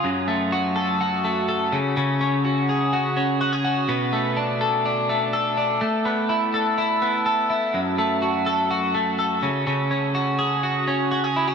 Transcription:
\new Staff \with { instrumentName = "Clean electric guitar" } { \time 4/4 \key fis \minor \tempo 4 = 125 fis,8 a8 fis'8 a'8 fis'8 a8 a'8 cis8 | cis8 cis'8 fis'8 gis'8 fis'8 cis'8 fis'16 gis'16 fis'8 | b,8 a8 d'8 a'8 d'8 a8 a'8 d'8 | a8 b8 e'8 a'8 e'8 b8 a'8 e'8 |
fis,8 a8 fis'8 a'8 fis'8 a8 a'8 cis8 | cis8 cis'8 fis'8 gis'8 fis'8 cis'8 fis'16 gis'16 e'16 fis'16 | }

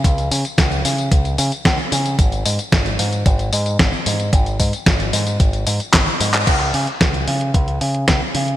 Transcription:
<<
  \new Staff \with { instrumentName = "Picked electric bass" } { \clef bass \time 4/4 \key aes \mixolydian \tempo 4 = 112 des,8 des8 des,8 des8 des,8 des8 des,8 des8 | aes,,8 aes,8 aes,,8 aes,8 aes,,8 aes,8 aes,,8 aes,8 | aes,,8 aes,8 aes,,8 aes,8 aes,,8 aes,8 aes,,8 aes,8 | des,8 des8 des,8 des8 des,8 des8 des,8 des8 | }
  \new DrumStaff \with { instrumentName = "Drums" } \drummode { \time 4/4 <hh bd tamb>16 <hh tamb>16 <hho tamb>16 <hh tamb>16 <hh bd sn tamb>16 <hh tamb>16 <hho tamb>16 <hh tamb>16 <hh bd tamb>16 <hh tamb>16 <hho tamb>16 <hh tamb>16 <hh bd sn tamb>16 tamb16 <hho tamb>16 <hh tamb>16 | <hh bd tamb>16 <hh tamb>16 <hho tamb>16 <hh tamb>16 <hh bd sn tamb>16 <hh tamb>16 <hho tamb>16 <hh tamb>16 <hh bd tamb>16 <hh tamb>16 <hho tamb>16 <hh tamb>16 <hh bd sn tamb>16 tamb16 <hho tamb>16 <hh tamb>16 | <hh bd tamb>16 <hh tamb>16 <hho bd tamb>16 <hh tamb>16 <hh bd sn tamb>16 <hh tamb>16 <hho tamb>16 <hh tamb>16 <hh bd tamb>16 <hh tamb>16 <hho tamb>16 <hh tamb>16 <hc hh bd sn tamb>16 tamb16 <hho tamb>16 <hc hh tamb>16 | <cymc hh bd>16 hh16 hho16 hh16 <hh bd sn>16 hh16 hho16 hh16 <hh bd>16 hh16 hho16 hh16 <hh bd sn>8 hho16 hh16 | }
>>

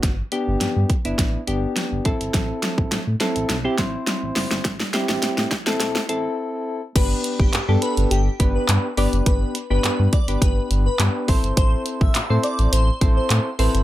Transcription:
<<
  \new Staff \with { instrumentName = "Digital synth lead" } { \time 4/4 \key g \major \tempo 4 = 104 r1 | r1 | r1 | b'16 r8 g'8 r16 b'16 r16 g'16 r8 b'16 r8 d''16 r16 |
b'16 r8 b'8 r16 d''16 r16 b'16 r8 b'16 r8 c''16 r16 | c''16 r8 e''8 r16 d''16 r16 c''16 r8 c''16 r8 b'16 r16 | }
  \new Staff \with { instrumentName = "Synth keys" } { \time 4/4 \key g \major <b d' fis'>16 r16 <b d' g'>4 r16 <b d' e'>8 r16 <b d' g'>4 <c' e' a'>8~ | <c' e' a'>4~ <c' e' a'>16 r16 <c' e' a'>8 r16 <c' e' g'>16 <c' e' c''>4.~ | <c' e' c''>16 r16 <c' e' g'>4 r16 <c' e' a'>8 r16 <c' e' a'>4~ <c' e' a'>16 r16 | <b d' g' b'>4 r16 <b d' g' a'>4 r16 <b d' g' b'>8. r16 <b d' g' b'>8~ |
<b d' g' b'>8 r16 <b d' g' b'>8. r16 <b d' g' b'>4 r16 <b d' g' b'>8 <c' e' a' c''>8~ | <c' e' a' c''>4 r16 <c' e' a' c''>4 r16 <c' e' a' c''>8. r16 <c' e' a' c''>8 | }
  \new Staff \with { instrumentName = "Sub bass" } { \clef bass \time 4/4 \key g \major g,,8 r16 g,,16 g,16 g,16 r16 g,,16 a,,8 g,,8 r16 g,,16 a,,16 g,,16 | a,,8 r16 a,,16 a,16 a,16 r16 a,,16 b,,8 a,,8 r16 a,,16 fis,,16 g,,16 | a,,8 r16 a,,16 a,16 a,16 r16 a,,16 b,,8 a,,8 r4 | g,,8 r16 g,,16 g,16 g,16 r16 g,,16 g,,8 g,,8 g,16 r16 g,,16 fis,,16 |
g,,8 r16 g,,16 g,16 g,16 r16 g,,16 g,,8 g,,8 g,16 r16 a,,16 g,,16 | a,,8 r16 a,,16 a,16 a,16 r16 a,,16 a,,8 a,,8 a,16 r16 a,,16 g,,16 | }
  \new DrumStaff \with { instrumentName = "Drums" } \drummode { \time 4/4 <hh bd sn>8 hh8 <hh sn>8 <hh bd>16 hh16 <hh bd sn>8 hh8 <hh sn>8 <hh bd>16 hh16 | <hh bd sn>8 <hh sn>16 bd16 <hh sn>8 <hh sn>16 hh16 <hh sn>8 <hh bd sn>8 <hh sn>8 <hho sn>16 <hh sn>16 | <hh bd sn>16 sn16 <hh sn>16 sn16 <hh sn>16 sn16 <hh bd sn>16 <hh sn>16 <hh sn>16 sn16 hh8 r4 | <cymc hh bd>8 hh16 bd16 <hc hh>8 hh16 hh16 hh8 <hh bd>8 <hc hh>8 hho16 hh16 |
<hh bd>8 hh8 <hc hh>8 <hh bd>16 hh16 <hh bd>8 hh8 <hc hh>8 <hho bd>16 hh16 | <hh bd>8 hh16 bd16 <hc hh>8 hh16 hh16 hh8 <hh bd>8 <hc hh>8 hho16 hh16 | }
>>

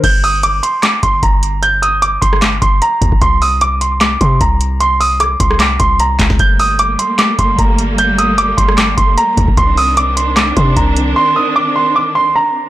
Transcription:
<<
  \new Staff \with { instrumentName = "Grand piano" } { \time 4/4 \key g \minor \tempo 4 = 151 g'''8 ees'''8 d'''8 c'''8 d'''8 c'''8 bes''4 | g'''8 ees'''8 d'''8 c'''8 d'''8 c'''8 bes''4 | c'''8 ees'''8 d'''8 c'''8 d'''8 c'''8 bes''4 | c'''8 ees'''8 d'''8 c'''8 d'''8 c'''8 bes''4 |
g'''8 ees'''8 d'''8 c'''8 d'''8 c'''8 bes''4 | g'''8 ees'''8 d'''8 c'''8 d'''8 c'''8 bes''4 | c'''8 ees'''8 d'''8 c'''8 d'''8 c'''8 bes''4 | c'''8 ees'''8 d'''8 c'''8 d'''8 c'''8 bes''4 | }
  \new Staff \with { instrumentName = "String section" } { \time 4/4 \key g \minor r1 | r1 | r1 | r1 |
<g a bes>1~ | <g a bes>1 | <ees c' d'>1~ | <ees c' d'>1 | }
  \new Staff \with { instrumentName = "808-style bass" } { \clef bass \time 4/4 \key g \minor g,,4. r4 fis,,8 g,,4~ | g,,4. g,,4 g,,8 r8 d,16 g,,16 | c,2~ c,8 c8 c,4~ | c,4. c,4 c,4 c,16 c,16 |
g,,4. r4 fis,,8 g,,4~ | g,,4. g,,4 g,,8 r8 d,16 g,,16 | c,2~ c,8 c8 c,4 | r1 | }
  \new DrumStaff \with { instrumentName = "Drums" } \drummode { \time 4/4 <cymc hh bd>8 hho8 hh8 hh8 <hc hh sn>8 <hh bd>8 <hh bd>8 hh8 | hh8 hh8 hh8 <hh bd>16 ss16 <hc hh sn>8 <hh bd>8 hh8 <hh bd>16 bd16 | <hh bd>8 hho8 hh8 hh8 <hc hh sn>8 <hh bd>8 <hh bd>8 hh8 | hh8 hho8 <hh ss>8 <hh bd>16 ss16 <hc hh sn>8 <hh bd>8 hh8 <hc hh bd sn>16 <bd sn>16 |
<hh bd>8 hho8 hh8 hh8 <hc hh sn>8 <hh bd>8 <hh bd>8 hh8 | hh8 hh8 hh8 <hh bd>16 ss16 <hc hh sn>8 <hh bd>8 hh8 <hh bd>16 bd16 | <hh bd>8 hho8 hh8 hh8 <hc hh sn>8 <hh bd>8 <hh bd>8 hh8 | r4 r4 r4 r4 | }
>>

